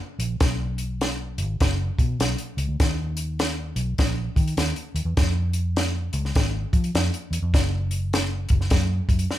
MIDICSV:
0, 0, Header, 1, 3, 480
1, 0, Start_track
1, 0, Tempo, 592300
1, 340, Time_signature, 4, 2, 24, 8
1, 7607, End_track
2, 0, Start_track
2, 0, Title_t, "Fingered electric bass"
2, 0, Program_c, 0, 33
2, 151, Note_on_c, 0, 34, 87
2, 290, Note_off_c, 0, 34, 0
2, 332, Note_on_c, 0, 35, 96
2, 1118, Note_on_c, 0, 32, 88
2, 1130, Note_off_c, 0, 35, 0
2, 1257, Note_off_c, 0, 32, 0
2, 1298, Note_on_c, 0, 30, 90
2, 1533, Note_off_c, 0, 30, 0
2, 1611, Note_on_c, 0, 47, 93
2, 1746, Note_off_c, 0, 47, 0
2, 1776, Note_on_c, 0, 35, 87
2, 1897, Note_off_c, 0, 35, 0
2, 2083, Note_on_c, 0, 37, 97
2, 2155, Note_off_c, 0, 37, 0
2, 2169, Note_on_c, 0, 38, 77
2, 2242, Note_off_c, 0, 38, 0
2, 2269, Note_on_c, 0, 39, 101
2, 3025, Note_off_c, 0, 39, 0
2, 3045, Note_on_c, 0, 35, 98
2, 3184, Note_off_c, 0, 35, 0
2, 3232, Note_on_c, 0, 34, 87
2, 3464, Note_off_c, 0, 34, 0
2, 3534, Note_on_c, 0, 51, 97
2, 3669, Note_off_c, 0, 51, 0
2, 3703, Note_on_c, 0, 39, 85
2, 3823, Note_off_c, 0, 39, 0
2, 4007, Note_on_c, 0, 39, 96
2, 4079, Note_off_c, 0, 39, 0
2, 4094, Note_on_c, 0, 40, 89
2, 4166, Note_off_c, 0, 40, 0
2, 4191, Note_on_c, 0, 41, 101
2, 4943, Note_off_c, 0, 41, 0
2, 4972, Note_on_c, 0, 37, 89
2, 5107, Note_off_c, 0, 37, 0
2, 5151, Note_on_c, 0, 32, 95
2, 5381, Note_off_c, 0, 32, 0
2, 5452, Note_on_c, 0, 53, 103
2, 5586, Note_off_c, 0, 53, 0
2, 5628, Note_on_c, 0, 41, 92
2, 5744, Note_off_c, 0, 41, 0
2, 5921, Note_on_c, 0, 40, 88
2, 5992, Note_off_c, 0, 40, 0
2, 6016, Note_on_c, 0, 41, 94
2, 6085, Note_off_c, 0, 41, 0
2, 6106, Note_on_c, 0, 30, 106
2, 6854, Note_off_c, 0, 30, 0
2, 6888, Note_on_c, 0, 30, 90
2, 7021, Note_off_c, 0, 30, 0
2, 7059, Note_on_c, 0, 42, 98
2, 7289, Note_off_c, 0, 42, 0
2, 7364, Note_on_c, 0, 42, 88
2, 7496, Note_off_c, 0, 42, 0
2, 7607, End_track
3, 0, Start_track
3, 0, Title_t, "Drums"
3, 159, Note_on_c, 9, 42, 78
3, 240, Note_off_c, 9, 42, 0
3, 328, Note_on_c, 9, 42, 97
3, 330, Note_on_c, 9, 38, 120
3, 332, Note_on_c, 9, 36, 120
3, 409, Note_off_c, 9, 42, 0
3, 411, Note_off_c, 9, 38, 0
3, 413, Note_off_c, 9, 36, 0
3, 633, Note_on_c, 9, 42, 68
3, 714, Note_off_c, 9, 42, 0
3, 819, Note_on_c, 9, 42, 75
3, 823, Note_on_c, 9, 38, 97
3, 900, Note_off_c, 9, 42, 0
3, 904, Note_off_c, 9, 38, 0
3, 1120, Note_on_c, 9, 42, 74
3, 1201, Note_off_c, 9, 42, 0
3, 1300, Note_on_c, 9, 42, 83
3, 1302, Note_on_c, 9, 36, 95
3, 1308, Note_on_c, 9, 38, 102
3, 1381, Note_off_c, 9, 42, 0
3, 1383, Note_off_c, 9, 36, 0
3, 1389, Note_off_c, 9, 38, 0
3, 1609, Note_on_c, 9, 36, 85
3, 1614, Note_on_c, 9, 42, 72
3, 1690, Note_off_c, 9, 36, 0
3, 1695, Note_off_c, 9, 42, 0
3, 1784, Note_on_c, 9, 42, 91
3, 1788, Note_on_c, 9, 38, 95
3, 1865, Note_off_c, 9, 42, 0
3, 1869, Note_off_c, 9, 38, 0
3, 1931, Note_on_c, 9, 42, 54
3, 2012, Note_off_c, 9, 42, 0
3, 2091, Note_on_c, 9, 42, 77
3, 2172, Note_off_c, 9, 42, 0
3, 2268, Note_on_c, 9, 42, 97
3, 2269, Note_on_c, 9, 36, 120
3, 2270, Note_on_c, 9, 38, 120
3, 2349, Note_off_c, 9, 42, 0
3, 2350, Note_off_c, 9, 36, 0
3, 2351, Note_off_c, 9, 38, 0
3, 2567, Note_on_c, 9, 42, 64
3, 2648, Note_off_c, 9, 42, 0
3, 2750, Note_on_c, 9, 42, 75
3, 2754, Note_on_c, 9, 38, 103
3, 2831, Note_off_c, 9, 42, 0
3, 2835, Note_off_c, 9, 38, 0
3, 3049, Note_on_c, 9, 42, 74
3, 3130, Note_off_c, 9, 42, 0
3, 3228, Note_on_c, 9, 42, 83
3, 3232, Note_on_c, 9, 36, 98
3, 3236, Note_on_c, 9, 38, 117
3, 3309, Note_off_c, 9, 42, 0
3, 3313, Note_off_c, 9, 36, 0
3, 3317, Note_off_c, 9, 38, 0
3, 3536, Note_on_c, 9, 36, 86
3, 3542, Note_on_c, 9, 42, 69
3, 3617, Note_off_c, 9, 36, 0
3, 3623, Note_off_c, 9, 42, 0
3, 3627, Note_on_c, 9, 42, 58
3, 3707, Note_off_c, 9, 42, 0
3, 3707, Note_on_c, 9, 42, 93
3, 3711, Note_on_c, 9, 38, 101
3, 3788, Note_off_c, 9, 42, 0
3, 3792, Note_off_c, 9, 38, 0
3, 3859, Note_on_c, 9, 42, 54
3, 3940, Note_off_c, 9, 42, 0
3, 4017, Note_on_c, 9, 42, 74
3, 4098, Note_off_c, 9, 42, 0
3, 4190, Note_on_c, 9, 42, 105
3, 4192, Note_on_c, 9, 36, 127
3, 4192, Note_on_c, 9, 38, 122
3, 4271, Note_off_c, 9, 42, 0
3, 4273, Note_off_c, 9, 36, 0
3, 4273, Note_off_c, 9, 38, 0
3, 4485, Note_on_c, 9, 42, 66
3, 4566, Note_off_c, 9, 42, 0
3, 4672, Note_on_c, 9, 42, 74
3, 4676, Note_on_c, 9, 38, 104
3, 4753, Note_off_c, 9, 42, 0
3, 4757, Note_off_c, 9, 38, 0
3, 4966, Note_on_c, 9, 42, 75
3, 5047, Note_off_c, 9, 42, 0
3, 5066, Note_on_c, 9, 38, 36
3, 5147, Note_off_c, 9, 38, 0
3, 5149, Note_on_c, 9, 42, 82
3, 5152, Note_on_c, 9, 36, 100
3, 5157, Note_on_c, 9, 38, 110
3, 5230, Note_off_c, 9, 42, 0
3, 5233, Note_off_c, 9, 36, 0
3, 5238, Note_off_c, 9, 38, 0
3, 5455, Note_on_c, 9, 36, 86
3, 5458, Note_on_c, 9, 42, 68
3, 5536, Note_off_c, 9, 36, 0
3, 5539, Note_off_c, 9, 42, 0
3, 5542, Note_on_c, 9, 42, 62
3, 5623, Note_off_c, 9, 42, 0
3, 5631, Note_on_c, 9, 42, 89
3, 5636, Note_on_c, 9, 38, 105
3, 5712, Note_off_c, 9, 42, 0
3, 5717, Note_off_c, 9, 38, 0
3, 5785, Note_on_c, 9, 42, 55
3, 5866, Note_off_c, 9, 42, 0
3, 5939, Note_on_c, 9, 42, 76
3, 6020, Note_off_c, 9, 42, 0
3, 6109, Note_on_c, 9, 36, 127
3, 6112, Note_on_c, 9, 42, 102
3, 6114, Note_on_c, 9, 38, 120
3, 6190, Note_off_c, 9, 36, 0
3, 6193, Note_off_c, 9, 42, 0
3, 6195, Note_off_c, 9, 38, 0
3, 6410, Note_on_c, 9, 42, 68
3, 6491, Note_off_c, 9, 42, 0
3, 6591, Note_on_c, 9, 42, 76
3, 6595, Note_on_c, 9, 38, 107
3, 6672, Note_off_c, 9, 42, 0
3, 6676, Note_off_c, 9, 38, 0
3, 6877, Note_on_c, 9, 42, 77
3, 6890, Note_on_c, 9, 36, 91
3, 6958, Note_off_c, 9, 42, 0
3, 6971, Note_off_c, 9, 36, 0
3, 6975, Note_on_c, 9, 38, 36
3, 7053, Note_on_c, 9, 42, 84
3, 7056, Note_off_c, 9, 38, 0
3, 7060, Note_on_c, 9, 36, 107
3, 7061, Note_on_c, 9, 38, 106
3, 7134, Note_off_c, 9, 42, 0
3, 7141, Note_off_c, 9, 36, 0
3, 7142, Note_off_c, 9, 38, 0
3, 7364, Note_on_c, 9, 36, 86
3, 7369, Note_on_c, 9, 42, 74
3, 7445, Note_off_c, 9, 36, 0
3, 7447, Note_off_c, 9, 42, 0
3, 7447, Note_on_c, 9, 42, 62
3, 7528, Note_off_c, 9, 42, 0
3, 7541, Note_on_c, 9, 38, 59
3, 7607, Note_off_c, 9, 38, 0
3, 7607, End_track
0, 0, End_of_file